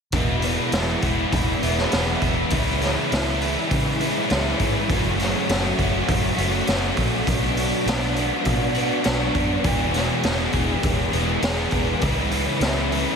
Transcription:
0.12 E1 E2 B2 E3 G#3 B3 E4, kick, open hi-hat
0.42 G#3 B3 E4, open hi-hat
0.46 E3
0.72 E1 E3 G#3 B3, snare, open hi-hat
0.77 E4
1.02 E1 E3 G#3 B3 E4, kick, open hi-hat
1.32 E1, kick, open hi-hat
1.62 E1 E3 G#3 B3 E4, open hi-hat
1.78 snare
1.92 E1 E3 G#3 B3 E4, snare, open hi-hat
2.21 E1, kick, open hi-hat
2.50 C#2 C#3 E3 G#3 C#4 E4, kick, open hi-hat
2.81 G#3 C#4 E4, snare, open hi-hat
3.10 C#2 E3 G#3 C#4 E4, snare, open hi-hat
3.41 G#3 C#4 E4, open hi-hat
3.71 C#3, kick, open hi-hat
4.00 G#3 C#4 E4, open hi-hat
4.29 C#2 E3 G#3 C#4 E4, snare, open hi-hat
4.59 G#2, kick, open hi-hat
4.89 F#1 F#2 C#3 F#3 A3 C#4 F#4, kick, open hi-hat
5.18 F#3 A3 C#4 F#4, snare, open hi-hat
5.48 F#1 F#3 A3 C#4 F#4, snare, open hi-hat
5.78 F#1 F#3 A3 C#4 F#4, kick, open hi-hat
6.08 F#1, kick, open hi-hat
6.37 F#1 F#3 A3 C#4 F#4, open hi-hat
6.67 F#1 F#3 A3 C#4 F#4, snare, open hi-hat
6.97 A#1, kick, open hi-hat
7.27 B1 B2 F#3 B3 D4 F#4, kick, open hi-hat
7.57 B3 D4 F#4, open hi-hat
7.86 B1 F#3 B3 D4 F#4, snare, open hi-hat
8.15 B3 D4 F#4, open hi-hat
8.45 B2, kick, open hi-hat
8.74 B3 D4 F#4, open hi-hat
9.03 B1 F#3 B3 D4 F#4, snare, open hi-hat
9.35 F#2, kick, open hi-hat
9.64 E1 E2 B2 E3 G#3 B3 G#4, kick, open hi-hat
9.94 E3 G#3 B3 G#4, snare, open hi-hat
10.23 E1 E3 G#3 B3 G#4, snare, open hi-hat
10.52 E1 E3 G#3 B3 G#4, kick, open hi-hat
10.83 E1, kick, open hi-hat
11.12 E1 E3 G#3 B3 G#4, open hi-hat
11.41 E1 E3 G#3 B3, snare, open hi-hat
11.45 G#4
11.71 E1, kick, open hi-hat
12.00 C#2 C#3 E3 G#3 C#4 E4, kick, open hi-hat
12.31 G#3 C#4 E4, open hi-hat
12.60 C#2 E3 G#3 C#4 E4, snare, open hi-hat
12.90 G#3 C#4 E4, open hi-hat

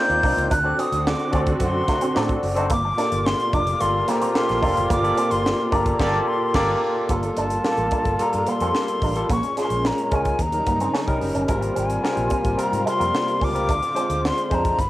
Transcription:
Already playing: D#3 A#3 C4 D#4 F4 A#4 D5 G6
0.09 D#2, closed hi-hat
0.23 C2 C4 D4 D#4 F4 A#4 D5, kick, open hi-hat
0.37 C#2, closed hi-hat
0.50 D2 D3 C4 D4 F#4 F#6, kick, closed hi-hat
0.64 C4 D4 F#4 A4 D5, muted clean electric guitar stroke
0.79 C4 D#6, closed hi-hat
0.92 D2, closed hi-hat
1.07 D6, snare
1.19 closed hi-hat
1.32 D2 C4 D4 F#4 A4 D5 D6, kick, closed hi-hat
1.46 kick, closed hi-hat
1.60 F#2, muted clean electric guitar stroke, kick, closed hi-hat
1.64 C6
1.88 A3, kick, snare, closed hi-hat
2.01 C4, closed hi-hat
2.14 A2 C4 D4 F#4 A4 D5, snare
2.29 kick, closed hi-hat
2.43 F#1, muted clean electric guitar stroke, open hi-hat
2.56 C4 D4 F#4 A4 C5, closed hi-hat
2.70 G1 A#2 A#3 F4 D6, kick, closed hi-hat
2.85 muted clean electric guitar stroke
2.97 A#3 D4 F4 G4 A4 D5, snare, closed hi-hat
3.12 G1, closed hi-hat
3.26 C6, snare
3.40 closed hi-hat
3.53 F1 D4 D6, kick, closed hi-hat
3.67 closed hi-hat
3.80 G1 A#3 F4 G4 A4 D5 C6, muted clean electric guitar stroke, closed hi-hat
4.08 A#3 F4 G4 A4 C5 A#5, snare, closed hi-hat
4.21 C4, closed hi-hat
4.35 A#3 F4 G4 A4 F5 C6, snare
4.49 A#1, snare, closed hi-hat
4.62 F1 A#3 D4 F4 G4 A4 D5, kick, open hi-hat
4.77 F#1, closed hi-hat
4.90 G1 A#3 D6, kick, closed hi-hat
5.03 A#3 F4 G4 A4 D5, muted clean electric guitar stroke, closed hi-hat
5.17 C4, closed hi-hat
5.31 G1 C6, closed hi-hat
5.46 snare
5.71 G1 A#3 D4 F4 G4 A4 D5 A#5, kick, closed hi-hat
5.86 kick, closed hi-hat
5.99 G1 A#3 F4 G4 A4 D5 A5, kick, snare, crash
6.28 C6
6.54 G1 A#3 F4 G4 A4 D5 A#5, kick, snare, crash
7.09 G1 A#2 G3 A3 A#3 F4 A4, kick, closed hi-hat
7.16 A#3
7.23 muted clean electric guitar stroke, closed hi-hat
7.37 G1 D4 A5, closed hi-hat
7.50 closed hi-hat
7.64 G3 A#3 F4 G4, snare
7.72 A4
7.77 A1, closed hi-hat
7.91 D4, kick, closed hi-hat
8.05 G1, kick, closed hi-hat
8.19 G3 A#3 F4 A4 A#5, muted clean electric guitar stroke, muted fretless electric bass stroke, closed hi-hat
8.33 G2, closed hi-hat
8.47 A#3 C6, closed hi-hat
8.60 F2 G3 A#3 C4 F4 A4, closed hi-hat
8.75 snare
8.88 closed hi-hat
9.02 A1 D4, kick, open hi-hat
9.16 G3 A#3 F4 A4, closed hi-hat
9.29 A#1 G#3 A#3 C#4 C#6, kick, closed hi-hat
9.43 muted clean electric guitar stroke, closed hi-hat
9.57 G#3 C#4 F4 G#4 C6, snare, closed hi-hat
9.65 A#4
9.70 A#1, closed hi-hat
9.85 A#5, snare
9.98 closed hi-hat
10.11 C#2 G#3 C#4 F4 A#4, kick, closed hi-hat
10.15 G#5
10.25 kick, closed hi-hat
10.39 D#2 C#3 G3 D#4 A#5, muted clean electric guitar stroke, kick, closed hi-hat
10.52 F#3 C#4 D#4 A#4, closed hi-hat
10.59 G3
10.66 G2 A#3, kick, closed hi-hat
10.80 C4, closed hi-hat
10.94 C#4, snare
11.08 C2 G3 C#4 D#4 A#4, kick, closed hi-hat
11.21 F#1, muted clean electric guitar stroke, open hi-hat
11.35 G1 C#4, closed hi-hat
11.48 G#1 C3 G3 G#3 A#3 C4 F4 A#4, kick, closed hi-hat
11.61 muted clean electric guitar stroke, closed hi-hat
11.75 G#1 C4, closed hi-hat
11.80 G#5
11.90 closed hi-hat
12.03 G3 C4 F4 A#4, snare
12.17 A#1, closed hi-hat
12.30 C4, kick, closed hi-hat
12.44 G#1, kick, closed hi-hat
12.57 G3 C4 F4 A#4 A#5, muted clean electric guitar stroke, muted fretless electric bass stroke, closed hi-hat
12.72 G#2, closed hi-hat
12.86 G#3 C6, closed hi-hat
12.98 F2 G3 A#3 C4 F4 A#4, closed hi-hat
13.15 snare
13.28 closed hi-hat
13.41 C#2 C4 D6, kick, open hi-hat
13.54 G3 C4 F4 A#4, closed hi-hat
13.67 D2 D3 C4 D4, kick, closed hi-hat
13.83 muted clean electric guitar stroke, closed hi-hat
13.94 G#3 C4 D4 F4 C5, closed hi-hat
14.09 D2, closed hi-hat
14.25 C6, snare
14.38 closed hi-hat
14.50 F2 G#3 C4 D4 F4 C5, kick, closed hi-hat
14.55 A#5
14.65 kick, closed hi-hat
14.77 G1 D#3 B3 F4 B5, muted clean electric guitar stroke, kick, closed hi-hat

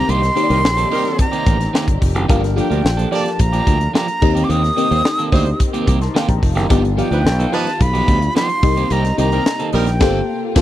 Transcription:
Already playing: D#3 A#3 C4 D#4 G4 A#4 D#5 A#5
0.08 C2 D#3 A#3 C4 G4 C6, closed hi-hat
0.22 muted clean electric guitar stroke, snare, closed hi-hat
0.35 D#3 A#3 C4 D#4 G4 A#4 C#5, closed hi-hat
0.43 D5
0.49 C2 D#3 G3 A#3 C4 D#4 G4 A#4, closed hi-hat
0.63 A#1, muted clean electric guitar stroke, snare
0.77 D#3 A#3 C4 A4, closed hi-hat
0.91 D#3 G3 A#3 C4 D#4 G4 A#4, open hi-hat
1.05 muted clean electric guitar stroke, snare, closed hi-hat
1.19 A#5, muted clean electric guitar stroke, kick, closed hi-hat
1.32 D#3 A#3 C4 G4, closed hi-hat
1.46 A1 D#3 A#3 C4 G4, kick, closed hi-hat
1.60 muted clean electric guitar stroke, snare, closed hi-hat
1.73 D#3 A#3 C4 G4, snare
1.87 G1, muted clean electric guitar stroke, kick, closed hi-hat
2.01 F1, muted clean electric guitar stroke, kick, open hi-hat
2.15 F#1 D#3 A#3 C4 G4, closed hi-hat
2.28 G1 F3 A#3 D4 F4 G4 A#4 F5, kick, closed hi-hat
2.43 muted clean electric guitar stroke, snare, closed hi-hat
2.56 F3 A#3 D4 F4 G4 A4 F5 G5, closed hi-hat
2.63 A#4
2.70 D2 F3 G3 A#3 D4 F4 G4 A#4, closed hi-hat
2.84 A#1, muted clean electric guitar stroke, snare
2.97 F3 A#3 D4 A4, closed hi-hat
3.11 F3 A#3 D4 G4 D5 A5, open hi-hat
3.25 muted clean electric guitar stroke, snare, closed hi-hat
3.39 A#1 A#5, muted clean electric guitar stroke, kick, closed hi-hat
3.53 F3 A#3 D4 G4, closed hi-hat
3.67 D2 F3 A#3 D4 G4, kick, closed hi-hat
3.80 muted clean electric guitar stroke, closed hi-hat
3.94 F3 A#3 D4 G4 A#5, snare
4.08 muted clean electric guitar stroke, closed hi-hat
4.21 D#2 D#3 C4 D#4 G4 A#4 D#5, muted clean electric guitar stroke, kick, crash
4.35 D#3 A#3 C4 G4, closed hi-hat
4.44 D6
4.49 D#2 D#3 A#3 C4 G4 D#6, closed hi-hat
4.63 muted clean electric guitar stroke, snare, closed hi-hat
4.76 D#3 A#3 C4 D#4 G4 A#4 D#5, closed hi-hat
4.91 D#2 D#3 G3 A#3 C4 D#4 G4 C5, closed hi-hat
5.04 muted clean electric guitar stroke, snare
5.18 D#3 A#3 C4 A4, closed hi-hat
5.32 D2 D#3 G3 A#3 C4 D#4 G4 C5, kick, open hi-hat
5.46 muted clean electric guitar stroke, closed hi-hat
5.60 muted clean electric guitar stroke, kick, closed hi-hat
5.73 D#3 A#3 C4 G4, closed hi-hat
5.87 C2 D#3 A#3 C4 G4 A#5 D6, kick, closed hi-hat
6.01 A5 C6, muted clean electric guitar stroke, snare, closed hi-hat
6.14 D#3 A#3 C4 G4 F5 A5, snare
6.28 A#1 G5 A#5, muted clean electric guitar stroke, kick, closed hi-hat
6.42 F1, muted clean electric guitar stroke, kick, open hi-hat
6.55 F#1 D#3 A#3 C4 G4 D#5 G5, snare, closed hi-hat
6.69 G1 F3 G3 B3 D#4 F4 G4 D5, kick, closed hi-hat
6.84 muted clean electric guitar stroke, closed hi-hat
6.97 F3 B3 D#4 F4 G4 F5 G5, closed hi-hat
7.11 D2 F3 B3 D#4 G4 B4, closed hi-hat
7.25 B1, muted clean electric guitar stroke, snare
7.39 F3 B3 D#4 A4, closed hi-hat
7.52 F3 B3 D#4 G4 B4 A5, open hi-hat
7.66 muted clean electric guitar stroke, snare, closed hi-hat
7.80 B1 B5, muted clean electric guitar stroke, kick, closed hi-hat
7.93 F3 B3 D#4 G4, closed hi-hat
8.08 D2 F3 B3 D#4 G4, kick, closed hi-hat
8.22 muted clean electric guitar stroke, closed hi-hat
8.35 F3 B3 D#4 G4 C6, snare
8.49 muted clean electric guitar stroke, closed hi-hat
8.63 C2 C3 A#3 C4 D#4 G4 A#4 D#5, muted clean electric guitar stroke, kick, open hi-hat
8.77 D#3 A#3 C4 G4, closed hi-hat
8.90 C2 D#3 A#3 C4 G4 A#5, closed hi-hat
9.05 muted clean electric guitar stroke, snare, closed hi-hat
9.18 C2 D#3 A#3 C4 D#4 G4 A#4 D#5 A#5, closed hi-hat
9.32 D#3 G3 A#3 C4 D#4 G4 A#4, closed hi-hat
9.46 muted clean electric guitar stroke, snare
9.59 D#3 A#3 C4 A4, closed hi-hat
9.73 A#1 D#3 G3 A#3 C4 D#4 G4 A#4 G5, open hi-hat
9.87 muted clean electric guitar stroke, snare, closed hi-hat
10.00 G1 A3 A#3 C4 F4 G4 A4 C5, kick, snare, crash
10.56 G1 A#3 C4 F4 G4 A4 C5, kick, snare, crash

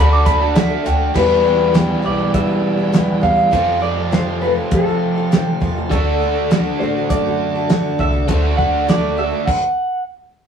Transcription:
Already playing: D2 D3 A3 D4 A4 D5 F#5
0.00 F#4 A4 B5
0.13 D6
0.25 A3 D4 F#4 A4 B5, kick, closed hi-hat
0.40 D4 F#4 A4 A5
0.55 D3 A3 D4 F#4 A4 D5 E5 F#5, snare, closed hi-hat
0.69 D4 F#4 A4
0.84 D2 A3 D4 F#4 A4 G5, closed hi-hat
1.14 E2 B2 E3 G3 B3 E4 G4 B4 E5, kick, crash
1.44 G3 B3 E4 G4
1.73 E3 G3 B3 E4 G4 B4 G5, snare, closed hi-hat
2.02 B1 G3 B3 E4 G4 B4 D5 E5
2.18 B3 E4 G4
2.33 G2 G4 B4 D5 E5, kick, closed hi-hat
2.47 B3 E4 G4
2.77 B3 E4 G4
2.92 E3 G3 B3 E4 G4 B4 E5, snare, closed hi-hat
3.21 D2 G3 B3 E4 G4 F5, kick
3.36 B3 E4 G4
3.51 F2 C3 F3 A3 C4 F4 A4 C5, kick, closed hi-hat
3.81 F3 C4 F4 A4 D5
4.11 F3 C4 F4 A4 C5, snare, closed hi-hat
4.42 F3 C4 F4 A4 B4 C5
4.56 C4 F4 A4
4.71 F3 F4 A4 C5, kick, closed hi-hat
4.86 C4 F4 A4
5.15 C4 F4 A4
5.31 F3 C4 F4 A4 C5, snare, closed hi-hat
5.60 E2 F3 C4 F4 A4, kick
5.76 C4 F4 A4
5.89 D2 D3 A3 D4 F#4 A4 D5, kick, closed hi-hat
5.93 A4
6.20 A3 D4 F#4 A4
6.50 D3 A3 D4 F#4 A4 D5, snare, closed hi-hat
6.78 A1 A3 D4 F#4 A4 C5 D5
6.82 F#4 A4
6.96 D4 F#4 A4
7.09 F#2 F#4 A4 D5, kick, closed hi-hat
7.25 D4 F#4 A4
7.55 D4 F#4 A4
7.68 D3 A3 D4 F#4 A4 D5, snare, closed hi-hat
7.72 A4
7.99 C2 A3 D4 F#4 A4 E5, kick
8.13 D4 F#4 A4
8.28 D2 D3 A3 D4 F#4 A4 C5, kick, closed hi-hat
8.57 A3 D4 F#4 F#5, kick
8.61 A4
8.87 D3 A3 D4 F#4 A4 D5 E5, snare, closed hi-hat
9.17 A3 D4 F#4 A4 D5 E5
9.30 D4 F#4 A4
9.47 F#5, kick, crash

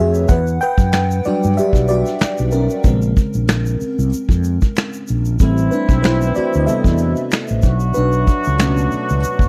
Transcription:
Already playing: F#4 C#5
0.00 F2 G#4 E5
0.14 shaker
0.28 E2 B4 F#5, kick, closed hi-hat, shaker
0.47 shaker
0.61 B4 G5, closed hi-hat, shaker
0.78 F#2, kick, shaker
0.92 finger snap, snare, closed hi-hat, shaker
1.11 shaker
1.24 F#3 G3 D4 F#4 D5, muted fretless electric bass stroke, open hi-hat, shaker
1.43 G2, shaker
1.54 E5, closed hi-hat
1.58 G4, muted fretless electric bass stroke, shaker
1.73 B1, kick, snare, shaker
1.88 F#4 D5, closed hi-hat, shaker
2.06 snare, shaker
2.19 finger snap, snare, closed hi-hat, shaker
2.23 muted fretless electric bass stroke
2.38 B1, shaker
2.51 C#4 A#4, closed hi-hat, shaker
2.70 shaker
2.83 A#1 C#3 G#3 C4, kick, closed hi-hat, shaker
3.02 shaker
3.16 kick, closed hi-hat, shaker
3.34 A#1, shaker
3.47 finger snap, snare, closed hi-hat, shaker
3.66 shaker
3.81 muted fretless electric bass stroke, open hi-hat, shaker
3.99 C2, shaker
4.10 closed hi-hat, shaker
4.14 muted fretless electric bass stroke
4.29 F2, kick, shaker
4.44 closed hi-hat, shaker
4.62 kick, shaker
4.75 finger snap, snare, closed hi-hat, shaker
4.78 finger snap
4.93 shaker
5.08 A#1, closed hi-hat, shaker
5.25 shaker
5.39 A1 E3 G3 A3 C4 E4, kick, closed hi-hat, shaker
5.58 shaker
5.71 D4 B4, closed hi-hat, shaker
5.89 B1, kick, shaker
6.03 E4 C5, finger snap, snare, closed hi-hat, shaker
6.22 shaker
6.35 F#4 D5, muted fretless electric bass stroke, closed hi-hat, shaker
6.54 D2, shaker
6.60 D#5
6.66 C3 G3 B3 A4 E5, closed hi-hat, shaker
6.84 E2, kick, snare, shaker
6.98 closed hi-hat, shaker
7.16 shaker
7.30 finger snap, snare, closed hi-hat, shaker
7.33 finger snap
7.48 A1, shaker
7.62 B1 F#3 D4 F#4, kick, closed hi-hat, shaker
7.80 shaker
7.94 B1 D4 B4, closed hi-hat, shaker
8.12 shaker
8.27 kick, closed hi-hat, shaker
8.44 C#2, shaker
8.58 B2 A3 C#4, finger snap, snare, closed hi-hat, shaker
8.77 shaker
8.92 muted fretless electric bass stroke, open hi-hat, shaker
9.09 C#2, shaker
9.20 closed hi-hat, shaker
9.39 F#1, kick, shaker

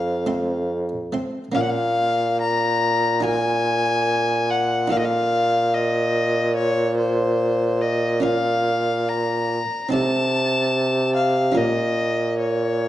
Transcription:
Already playing: F2 F5
0.26 A3 C4 C5
1.12 A3 C4 C5
1.52 A#2 A#3 C#4 A#4 F5
1.56 A#2
1.62 F#5
1.70 F5
2.42 A#5
3.20 D#4 F#4 A#4
3.25 G#5
4.50 F#5
4.88 D#4 F4 A4 F5
4.92 A#2
4.99 D#5
5.05 F5
5.74 D#5
6.56 C#5
6.98 C5
7.82 D#5
8.20 C#4 F4 A#4 F5
9.09 A#5
9.89 C4 D#4 A4 A5
9.93 C3
11.16 F5
11.52 C#4 F4 A#4
11.56 A#2 D#5
12.39 C#5

